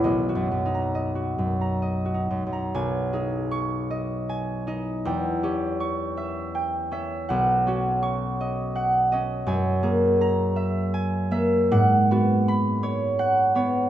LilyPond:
<<
  \new Staff \with { instrumentName = "Harp" } { \time 3/4 \key b \major \tempo 4 = 80 << { b''8. ais''2~ ais''16 | r4 cis'''2~ | cis'''4 cis'''2~ | cis'''4 cis'''2~ |
cis'''4 ais''2~ | ais''4 b''2 | } \\ { <b' dis''>16 fis'16 fis,8 dis''16 fis'16 fis,16 ais''16 dis''16 fis'16 fis,16 ais''16 | gis''8 gis'4 dis''8 gis''8 dis''8 | g''8 g'4 e''8 g''8 e''8 | fis''8 fis'4 dis''8 fis''8 dis''8 |
gis''8 gis'4 e''8 gis''8 e''8 | fis''8 fis'4 cis''8 fis''8 cis''8 | } >> }
  \new Staff \with { instrumentName = "Harp" } { \time 3/4 \key b \major \tuplet 3/2 { <b,, b>8 fis,8 dis'8~ } dis'4~ \tuplet 3/2 { dis'8 dis'8 fis,8 } | b,,8 dis'2 dis'8 | e,8 cis'2 cis'8 | b,,8 cis'2 cis'8 |
fis,8 ais2 ais8 | gis,8 b2 b8 | }
>>